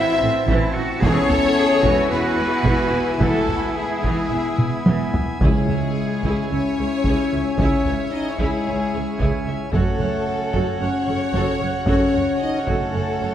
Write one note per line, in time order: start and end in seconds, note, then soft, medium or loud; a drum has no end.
0.00 0.86 E3 medium
0.00 0.86 C4 medium
0.00 1.02 C4 medium
0.00 0.22 E4 loud
0.00 0.50 E4 loud
0.00 0.98 E4 medium
0.00 1.00 E4 medium
0.00 0.48 C5 loud
0.00 0.47 E5 loud
0.00 0.49 E5 loud
0.00 1.01 E5 medium
0.00 1.02 A5 medium
0.21 0.29 A1 medium
0.21 0.31 A3 medium
0.21 0.49 C4 loud
0.48 0.56 A1 loud
0.48 0.74 E3 loud
0.48 0.75 E4 loud
0.48 taiko loud
0.75 0.84 A1 medium
0.75 0.85 C4 medium
0.75 1.03 F#4 loud
1.01 1.11 E1 loud
1.01 5.11 E3 loud
1.01 1.29 E3 loud
1.01 5.41 B3 loud
1.01 5.11 B3 loud
1.01 5.37 E4 loud
1.01 5.18 E4 loud
1.01 1.30 G#4 loud
1.01 2.06 A4 loud
1.01 2.06 C#5 loud
1.01 2.07 C#5 loud
1.01 5.38 E5 loud
1.01 5.39 G#5 loud
1.01 taiko loud
1.05 2.08 C#4 loud
1.29 1.38 E1 medium
1.29 1.37 B3 medium
1.29 1.57 A4 loud
1.29 taiko low medium
1.58 1.84 G#4 loud
1.83 1.92 E1 loud
1.83 2.09 E3 loud
1.83 3.21 F#4 loud
1.83 taiko medium
2.10 2.19 E1 medium
2.10 2.19 B3 medium
2.10 3.21 B3 loud
2.10 3.19 G#4 loud
2.10 3.21 B4 loud
2.38 2.46 E1 medium
2.38 2.47 G#3 medium
2.65 2.73 E1 loud
2.65 2.92 E3 medium
2.65 taiko medium
2.91 2.99 E1 medium
2.91 3.03 B3 medium
3.20 3.28 E1 loud
3.20 3.47 E3 medium
3.20 3.75 A3 medium
3.20 5.11 E4 medium
3.20 3.76 F#4 loud
3.20 3.75 A4 loud
3.20 3.77 A4 loud
3.20 taiko loud
3.47 3.55 E1 medium
3.47 3.59 B3 medium
3.47 taiko low medium
3.76 5.12 G#3 medium
3.76 5.14 E4 medium
3.76 5.14 G#4 medium
3.76 5.15 G#4 medium
4.03 4.11 E1 medium
4.03 4.30 E3 medium
4.03 taiko medium
4.32 4.40 E1 medium
4.32 4.40 B3 medium
4.58 4.67 E1 medium
4.58 4.68 G#3 medium
4.58 taiko mid medium
4.86 4.95 E1 medium
4.86 5.13 E3 medium
4.86 taiko high medium
5.14 5.22 E1 medium
5.14 5.22 B3 medium
5.14 taiko low loud
5.41 5.49 C#2 medium
5.41 5.51 C#2 medium
5.41 6.19 C#3 medium
5.41 9.70 C#3 medium
5.41 6.47 G#3 loud
5.41 9.69 C#4 medium
5.41 9.70 C#4 medium
5.41 9.69 E4 medium
5.41 5.67 E4 medium
5.41 6.46 G#4 medium
5.41 6.47 G#4 medium
5.41 5.67 G#4 medium
5.41 9.69 C#5 medium
5.41 9.70 E5 medium
5.41 9.69 G#5 medium
5.41 taiko loud
5.69 5.77 C#2 medium
5.69 5.79 C#2 medium
5.69 5.78 C#5 soft
5.69 5.78 E5 medium
5.69 taiko low medium
6.23 6.31 C#2 medium
6.23 6.32 C#2 medium
6.23 6.50 E4 medium
6.23 6.50 G#4 medium
6.23 taiko medium
6.50 6.58 C#2 medium
6.50 6.60 C#2 medium
6.50 7.58 C#4 loud
6.50 7.57 C#5 medium
6.50 7.57 C#5 loud
6.50 6.60 C#5 medium
6.50 6.59 E5 medium
6.79 6.87 C#2 medium
6.79 6.88 C#2 medium
6.79 6.87 G#4 medium
6.79 6.87 C#5 medium
7.04 7.14 C#2 medium
7.04 7.31 E4 medium
7.04 7.31 G#4 medium
7.04 taiko medium
7.32 7.40 C#2 medium
7.32 7.42 C#2 medium
7.32 7.41 C#5 medium
7.32 7.41 E5 medium
7.58 7.68 C#2 medium
7.58 8.12 C#4 loud
7.58 7.85 E4 medium
7.58 7.85 G#4 medium
7.58 8.11 C#5 medium
7.58 taiko loud
7.85 7.94 C#2 medium
7.85 7.95 C#2 medium
7.85 7.95 C#5 soft
7.85 7.96 E5 soft
7.85 taiko low medium
8.12 8.30 D#4 loud
8.12 8.30 D#5 medium
8.29 8.39 C#4 medium
8.29 8.39 C#5 medium
8.38 8.48 C#2 medium
8.38 8.49 C#2 medium
8.38 9.45 G#3 medium
8.38 8.65 E4 medium
8.38 9.44 G#4 medium
8.38 9.47 G#4 medium
8.38 8.65 G#4 medium
8.38 taiko medium
8.67 8.75 C#2 medium
8.67 8.76 C#2 medium
8.67 8.75 C#5 medium
8.67 8.76 E5 medium
8.93 9.02 C#2 medium
8.93 9.01 G#4 medium
8.93 9.02 C#5 medium
9.19 9.28 C#2 medium
9.19 9.29 C#2 medium
9.19 9.45 E4 medium
9.19 9.45 G#4 medium
9.19 taiko medium
9.47 9.55 C#2 medium
9.47 9.55 C#5 medium
9.47 9.55 E5 medium
9.73 9.82 F#1 medium
9.73 9.82 F#2 medium
9.73 13.35 C#3 medium
9.73 10.76 A3 loud
9.73 13.35 C#4 medium
9.73 9.98 F#4 medium
9.73 13.35 F#4 medium
9.73 9.98 A4 medium
9.73 10.76 A4 medium
9.73 13.35 C#5 medium
9.73 13.35 F#5 medium
9.73 taiko loud
10.00 10.08 F#1 medium
10.00 10.09 F#2 medium
10.00 10.09 C#5 medium
10.00 10.09 F#5 medium
10.00 taiko low medium
10.54 10.63 F#1 medium
10.54 10.63 F#2 medium
10.54 10.79 F#4 medium
10.54 10.79 A4 medium
10.54 taiko medium
10.80 10.89 F#1 medium
10.80 10.89 F#2 medium
10.80 11.86 C#4 loud
10.80 11.85 C#5 medium
10.80 11.86 C#5 medium
10.80 10.90 C#5 medium
10.80 10.91 F#5 medium
11.08 11.16 F#1 medium
11.08 11.16 F#2 medium
11.08 11.16 A4 medium
11.08 11.16 C#5 medium
11.34 11.42 F#1 medium
11.34 11.42 F#2 medium
11.34 11.59 F#4 medium
11.34 11.59 A4 medium
11.34 taiko medium
11.61 11.70 F#1 medium
11.61 11.70 F#2 medium
11.61 11.69 C#5 medium
11.61 11.70 F#5 medium
11.86 11.97 F#1 medium
11.86 11.96 F#2 medium
11.86 12.39 C#4 loud
11.86 12.12 F#4 medium
11.86 12.13 A4 medium
11.86 12.39 C#5 medium
11.86 12.40 C#5 medium
11.86 taiko loud
12.13 12.23 F#1 medium
12.13 12.22 F#2 medium
12.13 12.23 C#5 medium
12.13 12.22 F#5 medium
12.13 taiko low soft
12.40 12.59 D#4 loud
12.40 12.58 D#5 medium
12.57 12.68 C#4 medium
12.57 12.66 C#5 medium
12.57 12.67 C#5 medium
12.67 12.76 F#1 medium
12.67 12.75 F#2 medium
12.67 13.35 A3 loud
12.67 12.93 F#4 medium
12.67 12.92 A4 medium
12.67 13.35 A4 medium
12.67 taiko medium
12.94 13.02 F#1 medium
12.94 13.02 F#2 medium
12.94 13.03 C#5 medium
12.94 13.03 F#5 medium
13.21 13.30 F#1 medium
13.21 13.29 F#2 medium
13.21 13.30 A4 medium
13.21 13.30 C#5 medium